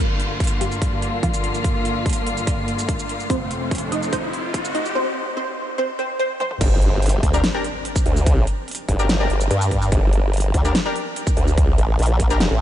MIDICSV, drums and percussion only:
0, 0, Header, 1, 2, 480
1, 0, Start_track
1, 0, Key_signature, -2, "minor"
1, 0, Tempo, 413793
1, 1907, Time_signature, 4, 2, 24, 8
1, 14630, End_track
2, 0, Start_track
2, 0, Title_t, "Drums"
2, 227, Note_on_c, 9, 42, 55
2, 343, Note_off_c, 9, 42, 0
2, 467, Note_on_c, 9, 36, 95
2, 468, Note_on_c, 9, 42, 49
2, 508, Note_off_c, 9, 42, 0
2, 508, Note_on_c, 9, 42, 68
2, 548, Note_off_c, 9, 42, 0
2, 548, Note_on_c, 9, 42, 86
2, 583, Note_off_c, 9, 36, 0
2, 664, Note_off_c, 9, 42, 0
2, 707, Note_on_c, 9, 42, 78
2, 823, Note_off_c, 9, 42, 0
2, 831, Note_on_c, 9, 82, 53
2, 947, Note_off_c, 9, 82, 0
2, 947, Note_on_c, 9, 36, 94
2, 947, Note_on_c, 9, 42, 81
2, 1063, Note_off_c, 9, 36, 0
2, 1063, Note_off_c, 9, 42, 0
2, 1187, Note_on_c, 9, 42, 55
2, 1303, Note_off_c, 9, 42, 0
2, 1427, Note_on_c, 9, 36, 97
2, 1427, Note_on_c, 9, 42, 82
2, 1543, Note_off_c, 9, 36, 0
2, 1543, Note_off_c, 9, 42, 0
2, 1551, Note_on_c, 9, 82, 77
2, 1667, Note_off_c, 9, 82, 0
2, 1668, Note_on_c, 9, 42, 53
2, 1784, Note_off_c, 9, 42, 0
2, 1791, Note_on_c, 9, 82, 50
2, 1907, Note_off_c, 9, 82, 0
2, 1907, Note_on_c, 9, 36, 92
2, 1908, Note_on_c, 9, 42, 79
2, 2023, Note_off_c, 9, 36, 0
2, 2024, Note_off_c, 9, 42, 0
2, 2148, Note_on_c, 9, 42, 55
2, 2264, Note_off_c, 9, 42, 0
2, 2387, Note_on_c, 9, 36, 98
2, 2388, Note_on_c, 9, 42, 53
2, 2429, Note_off_c, 9, 42, 0
2, 2429, Note_on_c, 9, 42, 69
2, 2468, Note_off_c, 9, 42, 0
2, 2468, Note_on_c, 9, 42, 86
2, 2503, Note_off_c, 9, 36, 0
2, 2584, Note_off_c, 9, 42, 0
2, 2628, Note_on_c, 9, 42, 80
2, 2744, Note_off_c, 9, 42, 0
2, 2752, Note_on_c, 9, 82, 53
2, 2867, Note_on_c, 9, 36, 97
2, 2868, Note_off_c, 9, 82, 0
2, 2868, Note_on_c, 9, 42, 83
2, 2983, Note_off_c, 9, 36, 0
2, 2984, Note_off_c, 9, 42, 0
2, 3108, Note_on_c, 9, 42, 54
2, 3224, Note_off_c, 9, 42, 0
2, 3232, Note_on_c, 9, 82, 78
2, 3347, Note_on_c, 9, 36, 104
2, 3348, Note_off_c, 9, 82, 0
2, 3348, Note_on_c, 9, 42, 82
2, 3463, Note_off_c, 9, 36, 0
2, 3464, Note_off_c, 9, 42, 0
2, 3472, Note_on_c, 9, 82, 76
2, 3588, Note_off_c, 9, 82, 0
2, 3588, Note_on_c, 9, 42, 56
2, 3704, Note_off_c, 9, 42, 0
2, 3712, Note_on_c, 9, 82, 50
2, 3827, Note_on_c, 9, 36, 104
2, 3828, Note_off_c, 9, 82, 0
2, 3829, Note_on_c, 9, 42, 81
2, 3943, Note_off_c, 9, 36, 0
2, 3945, Note_off_c, 9, 42, 0
2, 4068, Note_on_c, 9, 42, 54
2, 4184, Note_off_c, 9, 42, 0
2, 4307, Note_on_c, 9, 36, 108
2, 4308, Note_on_c, 9, 42, 51
2, 4349, Note_off_c, 9, 42, 0
2, 4349, Note_on_c, 9, 42, 70
2, 4388, Note_off_c, 9, 42, 0
2, 4388, Note_on_c, 9, 42, 85
2, 4423, Note_off_c, 9, 36, 0
2, 4504, Note_off_c, 9, 42, 0
2, 4548, Note_on_c, 9, 42, 78
2, 4664, Note_off_c, 9, 42, 0
2, 4671, Note_on_c, 9, 82, 53
2, 4787, Note_off_c, 9, 82, 0
2, 4787, Note_on_c, 9, 36, 105
2, 4787, Note_on_c, 9, 42, 81
2, 4903, Note_off_c, 9, 36, 0
2, 4903, Note_off_c, 9, 42, 0
2, 5028, Note_on_c, 9, 42, 53
2, 5144, Note_off_c, 9, 42, 0
2, 5267, Note_on_c, 9, 36, 110
2, 5268, Note_on_c, 9, 42, 82
2, 5383, Note_off_c, 9, 36, 0
2, 5384, Note_off_c, 9, 42, 0
2, 5391, Note_on_c, 9, 82, 74
2, 5507, Note_off_c, 9, 82, 0
2, 5507, Note_on_c, 9, 42, 54
2, 5623, Note_off_c, 9, 42, 0
2, 5631, Note_on_c, 9, 82, 51
2, 5747, Note_off_c, 9, 82, 0
2, 7427, Note_on_c, 9, 48, 64
2, 7543, Note_off_c, 9, 48, 0
2, 7551, Note_on_c, 9, 47, 73
2, 7667, Note_off_c, 9, 47, 0
2, 7667, Note_on_c, 9, 36, 119
2, 7667, Note_on_c, 9, 42, 83
2, 7667, Note_on_c, 9, 49, 105
2, 7783, Note_off_c, 9, 36, 0
2, 7783, Note_off_c, 9, 42, 0
2, 7783, Note_off_c, 9, 49, 0
2, 7908, Note_on_c, 9, 42, 56
2, 8024, Note_off_c, 9, 42, 0
2, 8147, Note_on_c, 9, 42, 53
2, 8189, Note_off_c, 9, 42, 0
2, 8189, Note_on_c, 9, 42, 70
2, 8228, Note_off_c, 9, 42, 0
2, 8228, Note_on_c, 9, 42, 84
2, 8344, Note_off_c, 9, 42, 0
2, 8387, Note_on_c, 9, 36, 63
2, 8387, Note_on_c, 9, 42, 82
2, 8503, Note_off_c, 9, 36, 0
2, 8503, Note_off_c, 9, 42, 0
2, 8511, Note_on_c, 9, 82, 53
2, 8627, Note_off_c, 9, 82, 0
2, 8627, Note_on_c, 9, 38, 115
2, 8627, Note_on_c, 9, 42, 83
2, 8743, Note_off_c, 9, 38, 0
2, 8743, Note_off_c, 9, 42, 0
2, 8867, Note_on_c, 9, 42, 55
2, 8983, Note_off_c, 9, 42, 0
2, 9107, Note_on_c, 9, 42, 83
2, 9223, Note_off_c, 9, 42, 0
2, 9230, Note_on_c, 9, 36, 104
2, 9230, Note_on_c, 9, 82, 80
2, 9346, Note_off_c, 9, 36, 0
2, 9346, Note_off_c, 9, 82, 0
2, 9347, Note_on_c, 9, 42, 57
2, 9463, Note_off_c, 9, 42, 0
2, 9471, Note_on_c, 9, 82, 56
2, 9587, Note_off_c, 9, 82, 0
2, 9587, Note_on_c, 9, 36, 123
2, 9587, Note_on_c, 9, 42, 83
2, 9703, Note_off_c, 9, 36, 0
2, 9703, Note_off_c, 9, 42, 0
2, 9827, Note_on_c, 9, 42, 56
2, 9943, Note_off_c, 9, 42, 0
2, 10068, Note_on_c, 9, 42, 54
2, 10108, Note_off_c, 9, 42, 0
2, 10108, Note_on_c, 9, 42, 71
2, 10147, Note_off_c, 9, 42, 0
2, 10147, Note_on_c, 9, 42, 88
2, 10263, Note_off_c, 9, 42, 0
2, 10307, Note_on_c, 9, 36, 64
2, 10307, Note_on_c, 9, 42, 84
2, 10423, Note_off_c, 9, 36, 0
2, 10423, Note_off_c, 9, 42, 0
2, 10431, Note_on_c, 9, 82, 53
2, 10547, Note_off_c, 9, 82, 0
2, 10548, Note_on_c, 9, 38, 124
2, 10548, Note_on_c, 9, 42, 84
2, 10664, Note_off_c, 9, 38, 0
2, 10664, Note_off_c, 9, 42, 0
2, 10788, Note_on_c, 9, 42, 57
2, 10904, Note_off_c, 9, 42, 0
2, 10911, Note_on_c, 9, 82, 80
2, 11027, Note_off_c, 9, 82, 0
2, 11028, Note_on_c, 9, 42, 86
2, 11144, Note_off_c, 9, 42, 0
2, 11152, Note_on_c, 9, 82, 79
2, 11267, Note_on_c, 9, 36, 64
2, 11268, Note_off_c, 9, 82, 0
2, 11268, Note_on_c, 9, 42, 57
2, 11383, Note_off_c, 9, 36, 0
2, 11384, Note_off_c, 9, 42, 0
2, 11391, Note_on_c, 9, 82, 52
2, 11507, Note_off_c, 9, 82, 0
2, 11508, Note_on_c, 9, 36, 125
2, 11508, Note_on_c, 9, 42, 83
2, 11624, Note_off_c, 9, 36, 0
2, 11624, Note_off_c, 9, 42, 0
2, 11748, Note_on_c, 9, 42, 55
2, 11864, Note_off_c, 9, 42, 0
2, 11988, Note_on_c, 9, 42, 51
2, 12029, Note_off_c, 9, 42, 0
2, 12029, Note_on_c, 9, 42, 71
2, 12068, Note_off_c, 9, 42, 0
2, 12068, Note_on_c, 9, 42, 88
2, 12184, Note_off_c, 9, 42, 0
2, 12228, Note_on_c, 9, 36, 67
2, 12228, Note_on_c, 9, 42, 79
2, 12344, Note_off_c, 9, 36, 0
2, 12344, Note_off_c, 9, 42, 0
2, 12352, Note_on_c, 9, 82, 52
2, 12468, Note_off_c, 9, 82, 0
2, 12469, Note_on_c, 9, 38, 126
2, 12469, Note_on_c, 9, 42, 82
2, 12585, Note_off_c, 9, 38, 0
2, 12585, Note_off_c, 9, 42, 0
2, 12709, Note_on_c, 9, 42, 54
2, 12825, Note_off_c, 9, 42, 0
2, 12949, Note_on_c, 9, 42, 85
2, 13065, Note_off_c, 9, 42, 0
2, 13071, Note_on_c, 9, 36, 109
2, 13072, Note_on_c, 9, 82, 77
2, 13187, Note_off_c, 9, 36, 0
2, 13188, Note_off_c, 9, 82, 0
2, 13189, Note_on_c, 9, 42, 54
2, 13305, Note_off_c, 9, 42, 0
2, 13312, Note_on_c, 9, 82, 53
2, 13428, Note_off_c, 9, 82, 0
2, 13428, Note_on_c, 9, 36, 122
2, 13428, Note_on_c, 9, 42, 79
2, 13544, Note_off_c, 9, 36, 0
2, 13544, Note_off_c, 9, 42, 0
2, 13668, Note_on_c, 9, 42, 52
2, 13784, Note_off_c, 9, 42, 0
2, 13908, Note_on_c, 9, 42, 51
2, 13950, Note_off_c, 9, 42, 0
2, 13950, Note_on_c, 9, 42, 65
2, 13988, Note_off_c, 9, 42, 0
2, 13988, Note_on_c, 9, 42, 82
2, 14104, Note_off_c, 9, 42, 0
2, 14148, Note_on_c, 9, 36, 64
2, 14148, Note_on_c, 9, 42, 78
2, 14264, Note_off_c, 9, 36, 0
2, 14264, Note_off_c, 9, 42, 0
2, 14271, Note_on_c, 9, 82, 50
2, 14387, Note_off_c, 9, 82, 0
2, 14389, Note_on_c, 9, 38, 125
2, 14389, Note_on_c, 9, 42, 79
2, 14505, Note_off_c, 9, 38, 0
2, 14505, Note_off_c, 9, 42, 0
2, 14630, End_track
0, 0, End_of_file